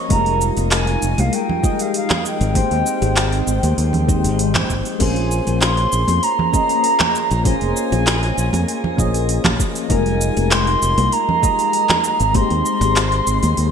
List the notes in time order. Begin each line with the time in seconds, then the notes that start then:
Already playing: A#3 C#4 F4 G#4 D#5
0.09 F1 G3 G#3 D#4 F4 A#4 A#5, kick, open hi-hat, high bongo, high conga, shaker
0.26 open hi-hat
0.41 shaker
0.57 F1, open hi-hat, high conga, shaker
0.71 G#5, clap, open hi-hat, shaker
0.87 open hi-hat
1.02 F1, shaker
1.18 C2 F5, open hi-hat, high conga, shaker
1.33 G5, open hi-hat, shaker
1.49 low conga
1.62 G#3 D#4 F4 G4 D#5, kick, high conga, shaker
1.79 F5, open hi-hat, shaker
1.94 F5, open hi-hat, shaker
2.10 clap, open hi-hat, high conga, low conga
2.25 G5, shaker
2.41 G#1, open hi-hat, shaker
2.54 G#3 C4 D#4 G4 C5, kick, open hi-hat, high bongo, high conga, shaker
2.71 D#2, open hi-hat
2.86 shaker
3.02 G#1, open hi-hat, high bongo, high conga, shaker
3.16 clap, open hi-hat, shaker
3.32 open hi-hat
3.47 G#1, shaker
3.63 D#2, open hi-hat, high conga, shaker
3.78 D#2, open hi-hat, shaker
3.93 open hi-hat, low conga
4.07 G#3 C4 D#4 G4 C5, kick, high conga, shaker
4.24 G#1, open hi-hat, shaker
4.39 open hi-hat, shaker
4.55 kick, clap, open hi-hat, high conga, low conga
4.70 G#1, kick, shaker
4.85 open hi-hat, shaker
4.99 A#1 A#3 C#4 F4 G#4 C5 G#5, kick, open hi-hat, crash, high bongo, high conga, shaker
5.16 open hi-hat
5.31 shaker
5.47 A#1, open hi-hat, high conga, shaker
5.62 C6, clap, open hi-hat, shaker
5.77 open hi-hat
5.92 A#1, shaker
6.08 F2, open hi-hat, high conga, shaker
6.23 A#5, open hi-hat, shaker
6.39 low conga
6.52 A#3 C#4 F4 G#4 D#5, kick, high conga, shaker
6.69 open hi-hat, shaker
6.84 open hi-hat, shaker
7.00 clap, open hi-hat, high conga, low conga
7.15 shaker
7.31 A#1, open hi-hat, shaker
7.44 A#3 C#4 F4 G#4 C5 G#5, kick, open hi-hat, high bongo, high conga, shaker
7.61 F1, open hi-hat
7.77 shaker
7.92 A#1, open hi-hat, high bongo, high conga, shaker
8.07 clap, open hi-hat, shaker
8.23 open hi-hat
8.38 A#1, shaker
8.53 F2, open hi-hat, high conga, shaker
8.68 open hi-hat, shaker
8.84 low conga
8.97 A#1 A#3 C#4 F4 G#4 D#5, kick, high conga, shaker
9.14 open hi-hat, shaker
9.29 open hi-hat, shaker
9.45 A#1, kick, clap, open hi-hat, high conga, low conga
9.60 kick, shaker
9.75 open hi-hat, shaker
9.88 F1 G3 G#3 D#4 F4 A#4 G#5, kick, open hi-hat, high bongo, high conga, shaker
10.06 open hi-hat
10.21 shaker
10.37 F1, open hi-hat, high conga, shaker
10.51 C6, clap, open hi-hat, shaker
10.67 open hi-hat
10.82 F1, shaker
10.98 C2, open hi-hat, high conga, shaker
11.12 A#5, open hi-hat, shaker
11.29 low conga
11.41 G#3 D#4 F4 G4 D#5, kick, high conga, shaker
11.59 open hi-hat, shaker
11.73 open hi-hat, shaker
11.89 clap, open hi-hat, high conga, low conga
12.04 shaker
12.20 G#1, open hi-hat, shaker
12.34 G#3 C4 D#4 G4 C5 C6, kick, open hi-hat, high bongo, high conga, shaker
12.50 D#2, open hi-hat
12.66 shaker
12.81 G#1, open hi-hat, high bongo, high conga, shaker
12.96 clap, open hi-hat, shaker
13.12 open hi-hat
13.27 G#1, shaker
13.43 D#2, open hi-hat, high conga, shaker
13.57 D#2, open hi-hat, shaker